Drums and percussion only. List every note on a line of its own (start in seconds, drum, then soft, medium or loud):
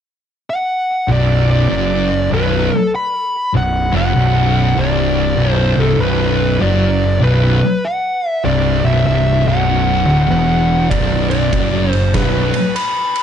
10.91 kick loud
10.91 ride medium
11.31 ride medium
11.53 kick loud
11.53 ride medium
11.93 ride medium
12.14 kick loud
12.14 snare loud
12.14 ride medium
12.54 ride medium
12.76 ride loud
13.16 ride medium